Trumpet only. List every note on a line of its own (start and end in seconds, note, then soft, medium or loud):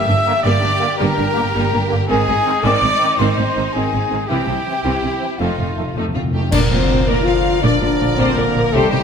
0.00 0.43 E5 loud
0.43 0.98 D5 loud
0.98 1.79 A#4 medium
2.09 2.66 G#4 loud
2.64 3.19 D5 loud
3.19 3.73 C5 medium
3.74 4.30 G#4 medium
4.28 5.40 G4 medium
5.41 5.95 F4 medium
6.52 7.04 A#4 medium
7.08 7.62 A#4 medium
7.64 8.75 A#4 medium
8.73 9.03 G4 medium